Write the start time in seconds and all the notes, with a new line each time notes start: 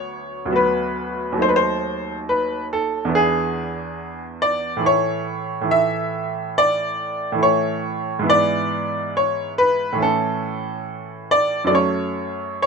Already playing: D2 F#3 B3 F#4 C#5
0.46 D2 F#3
0.51 B3 F#4
0.56 B4
1.32 D#2 F#3
1.36 A3 D#4
1.42 C5
1.49 B4
1.56 C5
2.29 B4
2.73 A4
3.05 E2 E3 B3
3.11 D4
3.15 G#4
4.42 D5
4.77 A2 E3
4.81 A3 E4
4.86 C#5
5.61 A2 E3 A3
5.68 E4 E5
6.58 D5
7.32 A2 E3
7.37 A3 E4
7.43 C#5
8.19 G#2 E3
8.23 B3 E4
8.30 D5
9.17 C#5
9.58 B4
9.93 A2 E3
9.98 A3 C#4
10.02 A4
11.31 D5
11.64 F#2 F#3 D5
11.69 A3 C#4
11.75 C#5
12.62 C#5